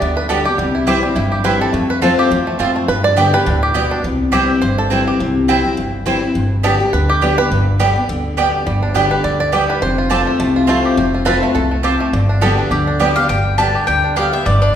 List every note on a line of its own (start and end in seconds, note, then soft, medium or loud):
0.00 0.43 D2 medium
0.00 0.28 D3 medium
0.00 0.43 B3 medium
0.00 0.16 D5 loud
0.17 0.29 B4 medium
0.29 0.45 D3 medium
0.29 0.45 G3 medium
0.29 0.40 B3 medium
0.29 0.46 B3 medium
0.29 0.40 G4 medium
0.29 0.45 G4 medium
0.29 0.44 A4 loud
0.29 0.40 D5 medium
0.29 0.40 G5 medium
0.45 0.59 B3 soft
0.45 0.72 G4 loud
0.45 0.58 G4 medium
0.58 1.00 C2 medium
0.58 1.14 C3 medium
0.58 1.00 G3 medium
0.75 1.14 E4 medium
0.87 1.03 E3 loud
0.87 1.03 G3 medium
0.87 0.97 C4 medium
0.87 1.03 C4 loud
0.87 0.97 E4 loud
0.87 1.02 E4 loud
0.87 1.29 G4 medium
0.87 0.97 C5 medium
0.87 0.98 G5 loud
1.03 1.42 G3 medium
1.03 1.17 C4 soft
1.03 1.16 E4 medium
1.16 1.58 G1 medium
1.16 1.71 G2 loud
1.16 1.44 E4 medium
1.32 1.71 G4 medium
1.44 1.72 E3 medium
1.44 1.73 G3 medium
1.44 1.55 C4 medium
1.44 1.73 C4 medium
1.44 1.55 E4 medium
1.44 1.73 E4 loud
1.44 1.61 B4 loud
1.44 1.55 C5 medium
1.44 1.55 G5 loud
1.61 1.90 A4 loud
1.73 2.15 F2 medium
1.73 2.29 F2 medium
1.73 2.15 A3 medium
1.90 2.02 B4 loud
2.02 2.30 F3 loud
2.02 2.30 A3 loud
2.02 2.12 C4 medium
2.02 2.31 C4 loud
2.02 2.12 F4 loud
2.02 2.31 F4 loud
2.02 2.19 A4 medium
2.02 2.12 C5 medium
2.02 2.13 A5 loud
2.19 2.46 G4 medium
2.31 2.56 E2 medium
2.31 2.59 E2 loud
2.31 2.73 C4 medium
2.47 2.75 A3 medium
2.59 2.85 F2 loud
2.59 2.88 F2 loud
2.59 2.70 C4 medium
2.59 2.70 F4 medium
2.59 2.88 F4 medium
2.59 2.70 C5 medium
2.59 2.70 A5 medium
2.76 2.89 A3 medium
2.88 3.30 G2 loud
2.88 3.44 G2 medium
2.88 3.04 B4 loud
3.04 3.31 D5 loud
3.16 3.33 D3 loud
3.16 3.33 G3 loud
3.16 3.27 B3 medium
3.16 3.34 B3 loud
3.16 3.27 G4 medium
3.16 3.60 G4 medium
3.16 3.32 G4 loud
3.16 3.28 D5 loud
3.16 3.28 G5 loud
3.33 3.47 B3 medium
3.33 3.46 G4 medium
3.33 3.61 B4 loud
3.46 3.88 D2 loud
3.46 3.74 A2 loud
3.46 3.88 D4 medium
3.63 4.01 G4 medium
3.74 4.03 B2 medium
3.74 3.85 B3 medium
3.74 4.04 B3 medium
3.74 3.85 G4 loud
3.74 3.85 D5 medium
3.74 3.85 G5 loud
3.91 4.04 D4 medium
4.04 4.46 C2 medium
4.04 4.60 C3 medium
4.32 4.61 E3 loud
4.32 4.61 G3 loud
4.32 4.42 C4 medium
4.32 4.61 C4 loud
4.32 4.43 E4 loud
4.32 4.62 E4 loud
4.32 4.60 G4 medium
4.32 4.43 C5 medium
4.32 4.43 G5 loud
4.62 5.04 G1 medium
4.62 5.17 G2 medium
4.62 4.79 C5 loud
4.78 5.08 A4 loud
4.90 5.19 E3 medium
4.90 5.19 G3 medium
4.90 5.01 C4 medium
4.90 5.19 C4 loud
4.90 5.01 E4 medium
4.90 5.20 E4 loud
4.90 5.01 C5 medium
4.90 5.01 G5 medium
5.08 5.74 G4 medium
5.20 5.61 C2 loud
5.20 5.75 C3 medium
5.48 5.64 E3 medium
5.48 5.64 G3 loud
5.48 5.59 C4 medium
5.48 5.65 C4 medium
5.48 5.59 E4 medium
5.48 5.63 E4 loud
5.48 5.59 C5 medium
5.48 5.59 G5 loud
5.64 5.78 C4 medium
5.64 5.77 E4 medium
5.77 6.19 G1 medium
5.77 6.33 G2 medium
6.06 6.22 E3 medium
6.06 6.22 G3 medium
6.06 6.16 C4 medium
6.06 6.22 C4 medium
6.06 6.16 E4 medium
6.06 6.21 E4 medium
6.06 6.16 C5 loud
6.06 6.17 G5 loud
6.22 6.36 C4 soft
6.22 6.34 E4 medium
6.35 6.77 G1 loud
6.35 6.91 G2 medium
6.63 6.80 D3 loud
6.63 6.80 G3 loud
6.63 6.74 B3 medium
6.63 6.80 B3 loud
6.63 6.74 G4 loud
6.63 6.79 G4 loud
6.63 6.94 A4 loud
6.63 6.74 D5 medium
6.63 6.74 G5 loud
6.80 6.94 B3 soft
6.80 6.93 G4 medium
6.93 7.35 D2 medium
6.93 7.21 D3 loud
6.93 7.10 B4 loud
7.09 7.39 G4 loud
7.21 7.37 D3 medium
7.21 7.38 G3 medium
7.21 7.32 B3 medium
7.21 7.38 B3 medium
7.21 7.32 G4 medium
7.21 7.37 G4 loud
7.21 7.32 D5 medium
7.21 7.32 G5 medium
7.38 7.51 B3 soft
7.38 7.50 G4 medium
7.38 8.05 B4 loud
7.51 7.93 G1 medium
7.51 8.06 G2 loud
7.79 7.95 D3 loud
7.79 7.96 G3 loud
7.79 7.90 B3 medium
7.79 7.96 B3 loud
7.79 7.90 G4 medium
7.79 7.95 G4 loud
7.79 7.90 D5 loud
7.79 7.90 G5 loud
7.96 8.09 B3 soft
7.96 8.08 G4 medium
8.09 8.51 D2 medium
8.09 8.36 D3 loud
8.37 8.65 D3 medium
8.37 8.65 G3 medium
8.37 8.47 B3 medium
8.37 8.66 B3 medium
8.37 8.48 G4 medium
8.37 8.66 G4 medium
8.37 8.48 D5 loud
8.37 8.48 G5 loud
8.66 9.08 G1 loud
8.66 9.22 G2 medium
8.66 8.94 G3 medium
8.83 9.22 D4 medium
8.94 9.23 D3 loud
8.94 9.37 G3 medium
8.94 9.23 G3 loud
8.94 9.05 B3 medium
8.94 9.23 B3 loud
8.94 9.05 G4 medium
8.94 9.24 G4 loud
8.94 9.05 D5 medium
8.94 9.06 G5 loud
9.11 9.24 B4 loud
9.24 9.66 D2 medium
9.24 9.51 D3 loud
9.24 9.39 D5 medium
9.40 9.69 D5 loud
9.52 9.80 D3 medium
9.52 9.81 G3 medium
9.52 9.63 B3 medium
9.52 9.81 B3 loud
9.52 9.63 G4 medium
9.52 9.82 G4 medium
9.52 9.81 G4 loud
9.52 9.63 D5 loud
9.52 9.63 G5 loud
9.70 9.83 B4 loud
9.82 10.24 F1 medium
9.82 10.37 F2 loud
9.82 10.24 C5 medium
9.98 10.26 F4 medium
10.10 10.38 F3 loud
10.10 10.39 A3 loud
10.10 10.20 C4 medium
10.10 10.39 C4 loud
10.10 10.21 F4 medium
10.10 10.39 F4 loud
10.10 10.53 G4 medium
10.10 10.21 C5 loud
10.10 10.21 A5 loud
10.27 10.55 F4 medium
10.40 10.82 C2 medium
10.40 10.95 C3 loud
10.40 10.68 A3 medium
10.56 10.95 F4 medium
10.67 10.96 F3 medium
10.67 10.96 A3 medium
10.67 11.11 A3 medium
10.67 10.78 C4 medium
10.67 10.97 C4 loud
10.67 10.78 F4 medium
10.67 10.97 F4 loud
10.67 10.78 C5 loud
10.67 10.78 A5 medium
10.85 11.24 G4 medium
10.97 11.39 F1 loud
10.97 11.53 F2 loud
10.97 11.40 C4 medium
11.14 11.26 F4 medium
11.25 11.42 F3 loud
11.25 11.42 A3 loud
11.25 11.36 C4 medium
11.25 11.43 C4 loud
11.25 11.36 F4 loud
11.25 11.41 F4 loud
11.25 11.54 B4 loud
11.25 11.36 C5 medium
11.25 11.36 A5 loud
11.42 11.70 A3 medium
11.42 11.56 C4 medium
11.42 11.55 F4 medium
11.55 11.97 C2 medium
11.55 11.83 E2 medium
11.55 11.82 A4 medium
11.71 11.99 A3 medium
11.83 12.12 F2 medium
11.83 11.94 C4 medium
11.83 11.94 F4 loud
11.83 12.13 G4 medium
11.83 11.94 C5 medium
11.83 11.94 A5 loud
12.00 12.13 A3 medium
12.13 12.55 G1 loud
12.13 12.69 G2 loud
12.13 12.55 D3 medium
12.29 12.57 D4 medium
12.41 12.70 D3 loud
12.41 12.70 G3 loud
12.41 12.52 B3 loud
12.41 12.70 B3 loud
12.41 12.52 G4 medium
12.41 12.71 G4 loud
12.41 12.72 A4 loud
12.41 12.52 D5 medium
12.41 12.52 G5 medium
12.58 12.86 D4 medium
12.71 13.13 D2 medium
12.71 12.98 D3 medium
12.71 12.98 G4 medium
12.87 13.27 D4 medium
12.99 13.16 D3 medium
12.99 13.29 G3 medium
12.99 13.16 G3 medium
12.99 13.10 B3 medium
12.99 13.16 B3 medium
12.99 13.10 G4 loud
12.99 13.15 G4 loud
12.99 13.10 D5 medium
12.99 13.10 G5 loud
13.16 13.30 B3 soft
13.16 13.29 G4 medium
13.16 13.28 F5 loud
13.29 13.71 G1 medium
13.29 13.85 G2 medium
13.29 13.71 D3 medium
13.29 13.56 G5 loud
13.58 13.86 D3 loud
13.58 13.86 G3 loud
13.58 13.68 B3 medium
13.58 13.87 B3 loud
13.58 14.00 D4 medium
13.58 13.68 G4 medium
13.58 13.87 G4 loud
13.58 13.69 D5 medium
13.58 13.69 G5 medium
13.58 13.85 A5 loud
13.75 14.16 G4 medium
13.87 14.30 D2 medium
13.87 14.16 D3 medium
13.87 14.45 G3 medium
13.87 14.14 G5 loud
14.04 14.43 D4 medium
14.16 14.32 D3 medium
14.16 14.33 G3 medium
14.16 14.26 B3 medium
14.16 14.33 B3 medium
14.16 14.75 G4 medium
14.16 14.27 G4 medium
14.16 14.32 G4 medium
14.16 14.27 D5 medium
14.16 14.33 F5 loud
14.16 14.27 G5 loud
14.33 14.72 B3 medium
14.33 14.46 B3 soft
14.33 14.45 G4 soft
14.33 14.46 E5 medium
14.46 14.67 G1 loud
14.46 14.75 G2 medium
14.46 14.75 G3 medium
14.46 14.61 D5 loud
14.62 14.75 D4 medium
14.62 14.74 D5 medium